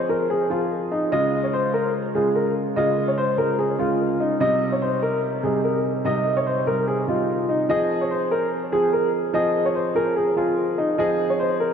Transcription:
0.00 0.09 F3 loud
0.00 0.10 C4 medium
0.00 0.11 G#4 loud
0.09 0.48 F3 medium
0.09 0.48 C4 medium
0.09 0.48 G#4 medium
0.09 0.26 A#4 medium
0.30 0.46 G#4 medium
0.50 1.08 F3 medium
0.50 1.08 C4 medium
0.50 0.89 F4 medium
0.50 1.09 G#4 medium
0.92 1.08 D#4 medium
1.12 1.89 C#3 loud
1.12 1.89 G#3 medium
1.12 1.90 F4 loud
1.12 1.42 D#5 loud
1.44 1.51 C#5 medium
1.53 1.70 C5 medium
1.74 1.90 A#4 medium
2.14 2.72 C#3 medium
2.14 2.73 G#3 medium
2.14 2.73 F4 medium
2.14 2.31 G#4 medium
2.35 2.52 A#4 medium
2.76 3.34 C#3 medium
2.76 3.35 G#3 medium
2.76 3.35 F4 loud
2.76 3.06 D#5 medium
3.08 3.16 C#5 medium
3.18 3.34 C5 medium
3.37 3.76 C#3 medium
3.37 3.76 G#3 medium
3.37 3.77 F4 medium
3.37 3.54 A#4 medium
3.59 3.75 G#4 medium
3.79 4.37 C#3 medium
3.79 4.37 G#3 medium
3.79 4.18 F4 medium
3.79 4.38 F4 medium
4.20 4.37 D#4 medium
4.40 5.18 C3 loud
4.40 5.18 G3 medium
4.40 5.18 D#4 loud
4.40 4.70 D#5 loud
4.72 4.80 C#5 medium
4.82 4.98 C5 medium
5.03 5.19 A#4 medium
5.43 6.01 C3 medium
5.43 6.01 G3 medium
5.43 6.02 D#4 medium
5.43 5.60 G#4 medium
5.64 5.80 A#4 medium
6.05 6.63 C3 loud
6.05 6.63 G3 medium
6.05 6.63 D#4 loud
6.05 6.35 D#5 loud
6.37 6.44 C#5 medium
6.47 6.63 C5 medium
6.66 7.05 C3 medium
6.66 7.05 G3 medium
6.66 7.06 D#4 medium
6.66 6.83 A#4 medium
6.88 7.04 G#4 medium
7.07 7.65 C3 medium
7.07 7.66 G3 medium
7.07 7.66 D#4 medium
7.07 7.47 F4 medium
7.49 7.65 D#4 medium
7.69 8.46 F3 medium
7.69 8.47 C4 medium
7.69 8.47 G#4 loud
7.69 7.99 D#5 loud
8.01 8.09 C#5 medium
8.11 8.27 C5 medium
8.31 8.48 A#4 medium
8.72 9.30 F3 medium
8.72 9.30 C4 medium
8.72 8.89 G#4 medium
8.72 9.31 G#4 medium
8.93 9.09 A#4 medium
9.33 9.92 F3 loud
9.33 9.92 C4 medium
9.33 9.92 G#4 loud
9.33 9.64 D#5 loud
9.66 9.73 C#5 medium
9.75 9.91 C5 medium
9.95 10.34 F3 medium
9.95 10.34 C4 medium
9.95 10.35 G#4 medium
9.95 10.12 A#4 medium
10.16 10.33 G#4 medium
10.36 10.94 F3 medium
10.36 10.94 C4 medium
10.36 10.75 F4 medium
10.36 10.95 G#4 medium
10.78 10.94 D#4 medium
10.98 11.73 F3 loud
10.98 11.73 C4 medium
10.98 11.73 G#4 loud
10.98 11.28 D#5 medium
11.30 11.38 C#5 medium
11.40 11.56 C5 medium
11.60 11.73 A#4 medium

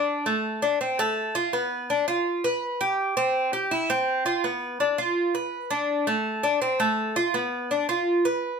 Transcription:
0.00 0.25 D4 medium
0.26 0.61 A3 medium
0.62 0.80 D4 medium
0.81 0.98 C4 medium
0.99 1.34 A3 loud
1.35 1.53 F4 medium
1.53 1.88 B3 medium
1.90 2.07 D4 medium
2.08 2.43 F4 medium
2.44 2.79 B4 medium
2.81 3.16 G4 medium
3.17 3.52 C4 medium
3.53 3.71 G4 medium
3.71 3.89 E4 medium
3.90 4.25 C4 loud
4.26 4.43 F4 medium
4.44 4.79 B3 medium
4.80 4.98 D4 medium
4.98 5.33 F4 medium
5.35 5.70 B4 medium
5.70 6.06 D4 medium
6.07 6.42 A3 medium
6.43 6.61 D4 medium
6.62 6.79 C4 medium
6.80 7.15 A3 medium
7.16 7.34 F4 medium
7.34 7.69 B3 medium
7.71 7.88 D4 medium
7.89 8.24 F4 medium
8.25 8.60 B4 medium

